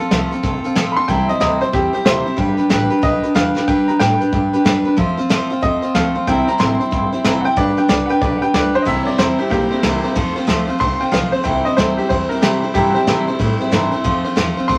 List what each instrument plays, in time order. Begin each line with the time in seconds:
0.00 steel-string acoustic guitar C4 F4 A4
0.11 upright bass C2, steel-string acoustic guitar F3 A3 C4 F4 A4, snare, closed hi-hat
0.31 steel-string acoustic guitar C4 F4 A4, muted upright bass stroke, closed hi-hat
0.43 upright bass F1, steel-string acoustic guitar A3 C4 F4 A4, kick, closed hi-hat
0.64 steel-string acoustic guitar C4 F4 A4, muted upright bass stroke, closed hi-hat
0.75 upright bass A1, steel-string acoustic guitar F3 A3 C4 F4 A4, snare, closed hi-hat
0.92 upright piano B5
0.96 steel-string acoustic guitar C4 F4 A4, upright piano C6, muted upright bass stroke
1.08 upright bass C2, steel-string acoustic guitar C3 E3 G3 C4 E4 C5, upright piano G5, kick, closed hi-hat
1.29 steel-string acoustic guitar G3 C4 E4 C5, upright piano D#5, muted upright bass stroke, closed hi-hat
1.40 upright bass D2, steel-string acoustic guitar C3 E3 G3 C4 E4 C5, upright piano D#5, snare, closed hi-hat
1.61 steel-string acoustic guitar G3 C4 E4 C5, upright piano C5, muted upright bass stroke, closed hi-hat
1.72 upright bass E2, steel-string acoustic guitar G3 C4 E4 C5, upright piano G4, kick, closed hi-hat
1.93 steel-string acoustic guitar G3 C4 E4 C5, upright piano G4, muted upright bass stroke, closed hi-hat
2.05 upright bass E1, steel-string acoustic guitar C3 E3 G3 C4 E4 C5, upright piano G4 C5, snare, closed hi-hat
2.26 steel-string acoustic guitar G3 C4 E4 C5, muted upright bass stroke
2.37 upright bass G1, steel-string acoustic guitar G3 D4 G4 B4, kick, closed hi-hat
2.57 steel-string acoustic guitar D4 G4 B4, muted upright bass stroke, closed hi-hat
2.69 upright bass A1, steel-string acoustic guitar G3 D4 G4 B4, snare, closed hi-hat
2.90 steel-string acoustic guitar D4 G4 B4, closed hi-hat
3.02 upright bass B1, steel-string acoustic guitar G3 D4 G4 B4, upright piano D#5, kick, closed hi-hat
3.23 steel-string acoustic guitar D4 G4 B4, muted upright bass stroke, closed hi-hat
3.34 upright bass E2, steel-string acoustic guitar G3 D4 G4 B4, upright piano F5, snare, closed hi-hat
3.56 steel-string acoustic guitar D4 G4 B4, snare
3.67 upright bass D2, steel-string acoustic guitar G3 D4 G4 B4, upright piano G5, kick, closed hi-hat
3.88 steel-string acoustic guitar D4 G4 B4, upright piano A#5, muted upright bass stroke, closed hi-hat
4.00 upright bass A2, steel-string acoustic guitar G3 D4 G4 B4, upright piano G5, snare, closed hi-hat
4.20 steel-string acoustic guitar D4 G4 B4, closed hi-hat
4.32 upright bass G2, steel-string acoustic guitar G3 D4 G4 B4, kick, closed hi-hat
4.53 steel-string acoustic guitar D4 G4 B4, muted upright bass stroke, closed hi-hat
4.65 upright bass F#2, steel-string acoustic guitar G3 D4 G4 B4, snare, closed hi-hat
4.85 steel-string acoustic guitar D4 G4 B4, muted upright bass stroke
4.97 upright bass F2, steel-string acoustic guitar F3 A3 C4 F4 C5, kick, closed hi-hat
5.17 steel-string acoustic guitar C4 F4 C5, muted upright bass stroke, closed hi-hat
5.29 upright bass E2, steel-string acoustic guitar F3 A3 C4 F4 C5, snare
5.50 steel-string acoustic guitar C4 F4 C5, closed hi-hat
5.62 upright bass F2, steel-string acoustic guitar A3 C4 F4 C5, upright piano D#5, kick, closed hi-hat
5.82 steel-string acoustic guitar C4 F4 C5, muted upright bass stroke, closed hi-hat
5.94 upright bass D2, steel-string acoustic guitar F3 A3 C4 F4 C5, upright piano F5, snare, closed hi-hat
6.15 steel-string acoustic guitar C4 F4 C5, muted upright bass stroke
6.27 upright bass C2, steel-string acoustic guitar C3 E3 G3 C4 E4 C5, upright piano G5, kick, closed hi-hat
6.47 steel-string acoustic guitar G3 C4 E4 C5, upright piano A#5, closed hi-hat
6.58 upright bass A1, steel-string acoustic guitar C3 E3 G3 C4 E4 C5, upright piano C6, snare, closed hi-hat
6.80 steel-string acoustic guitar G3 C4 E4 C5, closed hi-hat
6.91 upright bass G1, steel-string acoustic guitar G3 C4 E4 C5, kick, closed hi-hat
7.12 steel-string acoustic guitar G3 C4 E4 C5, closed hi-hat
7.24 upright bass F1, steel-string acoustic guitar C3 E3 G3 C4 E4 C5, snare, closed hi-hat
7.41 steel-string acoustic guitar C5, upright piano F#5, muted upright bass stroke
7.45 steel-string acoustic guitar G3 C4 E4, upright piano G5
7.56 upright bass G1, steel-string acoustic guitar G3 D4 G4 B4, upright piano D5, kick, closed hi-hat
7.77 steel-string acoustic guitar D4 G4 B4, upright piano G5, muted upright bass stroke, closed hi-hat
7.88 upright bass C2, steel-string acoustic guitar G3 D4 G4 B4, upright piano D5, snare, closed hi-hat
8.06 steel-string acoustic guitar B4, upright piano F#5
8.10 steel-string acoustic guitar D4 G4, upright piano G5, closed hi-hat
8.21 upright bass B1, steel-string acoustic guitar G3 D4 G4 B4, upright piano D5, kick, closed hi-hat
8.38 upright piano F#5
8.42 steel-string acoustic guitar D4 G4 B4, upright piano G5, muted upright bass stroke, closed hi-hat
8.54 upright bass D2, steel-string acoustic guitar G3 D4 G4 B4, upright piano D5, snare, closed hi-hat
8.74 steel-string acoustic guitar D4 G4 B4, upright piano C5, muted upright bass stroke
8.82 steel-string acoustic guitar C3 E3 G3 C4, upright piano D#5
8.86 upright bass C2, steel-string acoustic guitar E4 C5, upright piano E5, kick, crash
9.02 steel-string acoustic guitar C5, upright piano C#5
9.07 steel-string acoustic guitar G3 C4 E4, upright piano D5, ride
9.18 upright bass E2, steel-string acoustic guitar C3 E3 G3 C4 E4 C5, upright piano C5, snare, ride
9.39 steel-string acoustic guitar G3 C4 E4 C5, upright piano G4, ride
9.49 upright bass B1, steel-string acoustic guitar G3 C4 E4 C5, upright piano A#3 G4, kick, ride
9.71 steel-string acoustic guitar G3 C4 E4 C5, muted upright bass stroke, ride
9.83 upright bass C2, steel-string acoustic guitar C3 E3 G3 C4 E4 C5, snare, ride
10.04 steel-string acoustic guitar G3 C4 E4 C5, ride
10.15 upright bass F2, steel-string acoustic guitar F3 A3 C4 F4 C5, kick, ride
10.36 steel-string acoustic guitar C4 F4 C5, muted upright bass stroke, ride
10.47 upright bass D2, steel-string acoustic guitar F3 A3 C4 F4 C5, snare, ride
10.67 steel-string acoustic guitar C4 F4 C5, muted upright bass stroke, ride
10.78 upright bass C2, steel-string acoustic guitar A3 C4 F4 C5, upright piano C6, kick, ride
11.00 steel-string acoustic guitar C4 F4 C5, upright piano G5, ride
11.11 upright bass B1, steel-string acoustic guitar F3 A3 C4 F4 C5, upright piano F5, snare, ride
11.32 steel-string acoustic guitar C4 F4 C5, upright piano C5, muted upright bass stroke, ride
11.44 upright bass C2, steel-string acoustic guitar C3 E3 G3 C4 E4 C5, upright piano G5, kick, ride
11.65 steel-string acoustic guitar G3 C4 E4 C5, upright piano D#5, ride
11.77 upright bass D2, steel-string acoustic guitar C3 E3 G3 C4 E4 C5, upright piano C5, snare, ride
11.97 steel-string acoustic guitar G3 C4 E4 C5, upright piano G4, muted upright bass stroke, ride
12.09 upright bass E2, steel-string acoustic guitar G3 C4 E4 C5, upright piano C5, kick, ride
12.29 steel-string acoustic guitar C4 E4 C5, upright piano A#4, ride
12.33 steel-string acoustic guitar G3
12.41 steel-string acoustic guitar C3 E3 G3 C4 E4 C5, upright piano G4, snare, ride
12.62 steel-string acoustic guitar G3 C4 E4 C5, muted upright bass stroke, ride
12.74 upright bass G2, steel-string acoustic guitar C3 E3 G3 C4 E4 C5, upright piano G4, kick, ride
12.90 upright piano F#4
12.94 steel-string acoustic guitar G3 C4 E4 C5, upright piano G4, ride
13.06 upright bass C3, steel-string acoustic guitar C3 E3 G3 C4 E4 C5, snare, ride
13.27 steel-string acoustic guitar G3 C4 E4 C5, muted upright bass stroke, ride
13.39 upright bass A2, steel-string acoustic guitar G3 C4 E4 C5, kick, ride
13.60 steel-string acoustic guitar G3 C4 E4 C5, ride
13.71 upright bass G2, steel-string acoustic guitar C3 E3 G3 C4 E4 C5, snare, ride
13.92 steel-string acoustic guitar G3 C4 E4 C5, ride
14.04 upright bass F2, steel-string acoustic guitar F3 A3 C4 F4 C5, kick, ride
14.25 steel-string acoustic guitar C4 F4 C5, muted upright bass stroke, ride
14.36 upright bass E2, steel-string acoustic guitar F3 A3 C4 F4 C5, snare, ride
14.57 steel-string acoustic guitar C4 F4 C5, muted upright bass stroke, ride
14.68 upright bass D2, steel-string acoustic guitar A3 C4 F4 C5, upright piano C6, kick, ride